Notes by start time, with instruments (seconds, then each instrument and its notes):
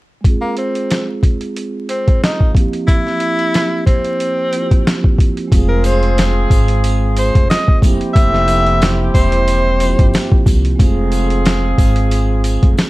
0.20 vibraphone G#3 C4, kick
0.25 vibraphone F4 G#4, closed hi-hat
0.41 tenor saxophone A#3
0.57 tenor saxophone C4, closed hi-hat
0.75 closed hi-hat
0.91 snare, closed hi-hat
1.23 kick, closed hi-hat
1.41 closed hi-hat
1.57 closed hi-hat
1.89 tenor saxophone C4, closed hi-hat
2.08 kick, closed hi-hat
2.24 tenor saxophone D#4, snare, closed hi-hat
2.40 kick
2.51 vibraphone F3 A#3 C4, kick
2.57 vibraphone E4 G4, closed hi-hat
2.73 closed hi-hat
2.88 tenor saxophone E4, kick, closed hi-hat
3.07 snare
3.20 closed hi-hat
3.39 closed hi-hat
3.54 snare, closed hi-hat
3.86 tenor saxophone C4, kick, closed hi-hat
4.04 closed hi-hat
4.20 closed hi-hat
4.50 vibraphone F3 A#3 C4 E4 F4, closed hi-hat
4.61 vibraphone G4
4.71 kick, closed hi-hat
4.87 snare, closed hi-hat
5.04 kick
5.18 kick, closed hi-hat
5.37 closed hi-hat
5.48 vibraphone G#3 C4, horn section C4 F4 G#4, kick
5.52 upright bass F1, vibraphone F4 G#4, closed hi-hat, sleigh bells
5.69 tenor saxophone A#4
5.84 tenor saxophone C5, closed hi-hat, sleigh bells
6.03 closed hi-hat
6.18 snare, closed hi-hat, sleigh bells
6.50 upright bass G#1, kick, closed hi-hat, sleigh bells
6.68 closed hi-hat
6.84 closed hi-hat, sleigh bells
7.17 tenor saxophone C5, closed hi-hat, sleigh bells
7.35 upright bass F1, kick, closed hi-hat
7.50 tenor saxophone D#5, snare, closed hi-hat, sleigh bells
7.68 kick
7.79 upright bass F1, vibraphone F3 A#3 C4, horn section C4 E4 G4, kick, sleigh bells
7.84 vibraphone E4 G4, closed hi-hat
8.01 closed hi-hat
8.14 upright bass F1, tenor saxophone E5, kick, closed hi-hat, sleigh bells
8.34 snare
8.48 closed hi-hat, sleigh bells
8.67 closed hi-hat
8.81 snare, closed hi-hat, sleigh bells
9.14 upright bass E1, tenor saxophone C5, kick, closed hi-hat, sleigh bells
9.32 closed hi-hat
9.47 closed hi-hat, sleigh bells
9.78 vibraphone F3 A#3 C4 E4 F4, closed hi-hat, sleigh bells
9.88 vibraphone G4
9.99 upright bass G1, kick, closed hi-hat
10.14 snare, closed hi-hat, sleigh bells
10.32 kick
10.46 upright bass C2, kick, closed hi-hat, sleigh bells
10.65 closed hi-hat
10.76 vibraphone G#3 C4, horn section C4 F4 G#4, kick, sleigh bells
10.80 upright bass F1, vibraphone F4 G#4, closed hi-hat
11.12 closed hi-hat, sleigh bells
11.30 closed hi-hat
11.45 snare, closed hi-hat, sleigh bells
11.78 upright bass G#1, kick, closed hi-hat, sleigh bells
11.96 closed hi-hat
12.11 closed hi-hat, sleigh bells
12.44 closed hi-hat, sleigh bells
12.63 upright bass F1, kick, closed hi-hat
12.77 snare, closed hi-hat, sleigh bells